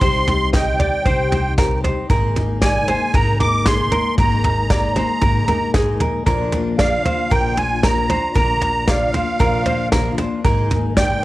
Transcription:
Already playing: C3 G3 D#4
0.01 C2 C3 G3 C4 D#4 G4 C5 C6, kick, floor tom
0.27 C4 D#4 G4, floor tom
0.53 G3 C4 D#4 G4 D#5 G5, kick, snare, floor tom
0.79 C4 D#4 G4 D5, floor tom
1.05 C2 C3 G3 C4 D#4 G4 C5, kick, floor tom
1.31 C4 D#4 G4 C5, floor tom
1.57 G3 C4 D#4 G4 A#4, kick, snare, floor tom
1.84 C4 D#4 G4 C5, floor tom
2.09 G#1 G#3 A#3 D#4 G#4 A#4, kick, floor tom
2.36 A#3 D#4 G#4, floor tom
2.61 G#3 A#3 D#4 G#4 D5 G#5, kick, snare, floor tom
2.88 A#3 D#4 G#4 C5, floor tom
3.14 G#1 G#3 A#3 D#4 G#4 A#4 A#5, kick, floor tom
3.39 A#3 D#4 G#4 A#4 D6, floor tom
3.66 G#3 A#3 D#4 G#4 C6, kick, snare, floor tom
3.92 A#3 D#4 G#4 A#4, floor tom
4.18 G#1 G#3 A#3 D#4 G#4 A#4 A#5, kick, floor tom
4.44 A#3 D#4 G#4, floor tom
4.70 G#3 A#3 D#4 G#4 D5 A#5, kick, snare, floor tom
4.95 A#3 D#4 G#4 C5, floor tom
5.22 G#1 G#3 A#3 D#4 G#4 A#4, kick, floor tom
5.48 G1 A#3 D#4 G#4 A#4, floor tom
5.74 G#1 G#3 A#3 D#4 G#4, kick, snare, floor tom
6.00 A#1 A#3 D#4 G#4 A#4, floor tom
6.26 A#1 A#2 D3 F3 A#3 D4 F4 A#4, kick, floor tom
6.52 F3 A#3 D4 A#4, floor tom
6.79 F3 A#3 D4 A#4 D5 F5, kick, snare, floor tom
7.04 F3 A#3 D4 A#4 C5, floor tom
7.30 A#1 A#2 D3 F3 A#3 D4 A#4 G5, kick, floor tom
7.56 F3 A#3 D4 A#4 C5 G#5, floor tom
7.83 F3 A#3 D4 A#4 A#5, kick, snare, floor tom
8.08 F3 A#3 D4 A#4 C5, floor tom
8.34 A#1 A#2 D3 F3 A#3 D4 A#4 A#5, kick, floor tom
8.60 F3 A#3 D4 A#4, floor tom
8.87 F3 A#3 D4 A#4 D5 F5, kick, snare, floor tom
9.12 F3 A#3 D4 A#4 C5, floor tom
9.39 A#1 A#2 D3 F3 A#3 D4 A#4, kick, floor tom
9.65 F3 A#3 D4 A#4 C5, floor tom
9.92 F3 A#3 D4 A#4, kick, snare, floor tom
10.18 F3 A#3 D4 A#4 C5, floor tom
10.44 G#1 G#3 A#3 D#4 G#4 A#4, kick, floor tom
10.70 A#3 D#4 G#4, floor tom
10.97 G#3 A#3 D#4 G#4 D5 G5, kick, snare, floor tom

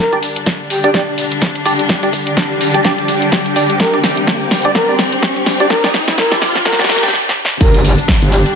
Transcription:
0.00 D3 G3 D4 A#4, riser
0.13 D4 G4 D5, closed hi-hat
0.23 open hi-hat
0.36 closed hi-hat
0.41 D6
0.46 kick, snare, closed hi-hat
0.70 G4, open hi-hat
0.83 D4 G4 D5 G5, closed hi-hat
0.94 D4 G4 D5, kick, snare, closed hi-hat
1.18 open hi-hat
1.32 closed hi-hat
1.42 kick, snare, closed hi-hat
1.55 closed hi-hat
1.65 D4 G4 D5, open hi-hat
1.79 closed hi-hat
1.89 kick, snare, closed hi-hat
2.03 D4 G4 D5, closed hi-hat
2.13 kick, open hi-hat
2.27 closed hi-hat
2.37 kick, snare, closed hi-hat
2.61 open hi-hat
2.74 D4 G4 D5, closed hi-hat
2.84 D4 G4 D5, kick, snare, closed hi-hat
2.98 closed hi-hat
3.08 open hi-hat
3.22 closed hi-hat
3.32 kick, snare, closed hi-hat
3.46 closed hi-hat
3.56 D4 G4 D5, open hi-hat
3.70 closed hi-hat
3.80 C4 A#4, kick, snare, closed hi-hat
3.93 D4 G4 D5, closed hi-hat
4.04 snare, open hi-hat
4.17 closed hi-hat
4.27 kick, snare, closed hi-hat
4.51 snare, open hi-hat
4.65 D4 G4 D5, closed hi-hat
4.75 A#4, kick, snare, closed hi-hat
4.89 D4 G4 D5
4.99 snare, open hi-hat
5.13 closed hi-hat
5.23 kick, snare, closed hi-hat
5.36 closed hi-hat
5.46 snare, open hi-hat
5.60 D4 G4 D5, closed hi-hat
5.70 A#4, kick, snare, closed hi-hat
5.84 D4 G4 D5, snare, closed hi-hat
5.94 kick, snare, open hi-hat
6.08 snare, closed hi-hat
6.18 A#4, kick, snare, closed hi-hat
6.32 D4 G4 D5, snare
6.42 snare, open hi-hat
6.55 snare, closed hi-hat
6.65 A#4, kick, snare, closed hi-hat
6.72 snare
6.79 D4 G4 D5, snare, closed hi-hat
6.84 snare
6.89 A#4, snare, open hi-hat
6.96 snare
7.03 D4 G4 D5, snare, closed hi-hat
7.08 snare
7.13 snare
7.29 snare
7.45 snare
7.61 G1 D3 G3 D4 A#4, kick, closed hi-hat, crash, impact, shaker
7.74 closed hi-hat
7.85 open hi-hat, shaker
7.98 closed hi-hat, shaker
8.08 kick, snare, closed hi-hat, shaker
8.22 G1, closed hi-hat, shaker
8.32 G4, open hi-hat, shaker
8.46 G4, closed hi-hat, shaker

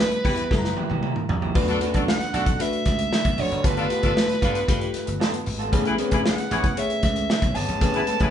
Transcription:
Already playing: G3 C#4 E4 B4
0.11 muted clean electric guitar stroke, closed hi-hat
0.24 E2 B3 E4 G4 B4, kick, open hi-hat
0.37 muted clean electric guitar stroke, closed hi-hat
0.51 F#1 G3 E4 F#4 A4, muted clean electric guitar stroke, kick, snare
0.58 A#5
0.64 muted clean electric guitar stroke, snare
0.76 A#3 E4 G4, high tom
0.90 E1 A#3 E4 G4, high tom
1.02 A#3 E4 G4, mid tom
1.15 muted clean electric guitar stroke, mid tom
1.29 A#1, muted clean electric guitar stroke, floor tom
1.42 A#3 E4 G4, floor tom
1.54 B1 A3 D4 F#4 B4, kick, splash
1.68 D4 F#4 A4, muted clean electric guitar stroke, closed hi-hat
1.81 A3 C#4 D4 F#4 B4, closed hi-hat
1.87 D4
1.94 B1 A3 D4 F#4 A4, kick, closed hi-hat
2.08 F#5, snare
2.20 muted clean electric guitar stroke, snare, closed hi-hat
2.33 B1 A3 D4 F#4 A4, closed hi-hat
2.46 muted clean electric guitar stroke, kick, closed hi-hat
2.59 A3 D4 F#4 B4 E5, muted clean electric guitar stroke, closed hi-hat
2.72 muted clean electric guitar stroke, closed hi-hat
2.85 C#2, kick, snare, closed hi-hat
2.99 muted clean electric guitar stroke, closed hi-hat
3.12 muted clean electric guitar stroke, snare
3.25 B1, muted clean electric guitar stroke, kick, closed hi-hat
3.37 F1 A3 D4 F#4 C#5, open hi-hat
3.51 F#1 A3 D4 F#4, closed hi-hat
3.63 G1 A3 B3 F4 G4 A4 B4, kick, closed hi-hat
3.77 D4 F4 A4, muted clean electric guitar stroke, closed hi-hat
3.89 A3 B3 F4 G4 B4, closed hi-hat
4.02 G1 B3 D4 F4 A4, kick, closed hi-hat
4.17 snare
4.28 muted clean electric guitar stroke, snare, closed hi-hat
4.41 G2 B3 D4 F4 A4 B4, kick, closed hi-hat
4.54 muted clean electric guitar stroke, closed hi-hat
4.67 G2 A3 F4 G4 B4, muted clean electric guitar stroke, kick, closed hi-hat
4.80 muted clean electric guitar stroke, closed hi-hat
4.94 snare, closed hi-hat
5.06 G1, muted clean electric guitar stroke, closed hi-hat
5.20 B3 F4 A4, snare
5.33 muted clean electric guitar stroke, closed hi-hat
5.46 G#1, muted clean electric guitar stroke, open hi-hat
5.59 B3 F4 A4, closed hi-hat
5.72 A1 A3 B3 C#4 G#4 B4, kick, closed hi-hat
5.85 E4 G#4 B4, muted clean electric guitar stroke, closed hi-hat
5.98 A3 B3 C4 C#4 G#4 B4, closed hi-hat
6.05 C#4
6.11 A1 B3 C#4 E4 G#4 B4, kick, closed hi-hat
6.26 F#5, snare
6.38 muted clean electric guitar stroke, snare, closed hi-hat
6.51 A1 B3 C#4 E4 G#4 C#5, closed hi-hat
6.64 muted clean electric guitar stroke, kick, closed hi-hat
6.76 A3 C#4 G#4 C#5 E5, muted clean electric guitar stroke, closed hi-hat
6.90 muted clean electric guitar stroke, closed hi-hat
7.03 C#2 E5, kick, snare, closed hi-hat
7.16 muted clean electric guitar stroke, closed hi-hat
7.29 muted clean electric guitar stroke, snare
7.42 B1, muted clean electric guitar stroke, kick, closed hi-hat
7.55 G1 B3 C#4 G#4 A5, open hi-hat
7.68 G#1 B3 C#4 G#4, closed hi-hat
7.81 A1 A3 B3 C#4 G#4 B4, kick, closed hi-hat
7.94 E4 G#4 B4, muted clean electric guitar stroke, closed hi-hat
8.07 G#3 A3 B3 C#4 A4 B4, closed hi-hat
8.20 A1 B3 C#4 E4 G#4 B4, kick, closed hi-hat

